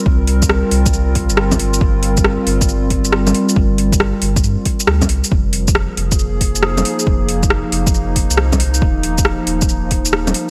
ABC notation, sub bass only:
X:1
M:4/4
L:1/16
Q:"Swing 16ths" 1/4=137
K:Gphr
V:1 name="Sub bass" clef=bass
C,,4 C,, z C,,4- C,, G,,,4- G,,, | G,,,4 G,,, z G,,,8 z2 | G,,,4 G,,, z G,,,2 G,, z3 D,,2 C,, z | F,,,4 F,,, z F,,,8 z2 |
F,,,4 F,,, z F,,,4- F,,, C,,4- C,, | E,,,4 E,,, z E,,,8 z2 |]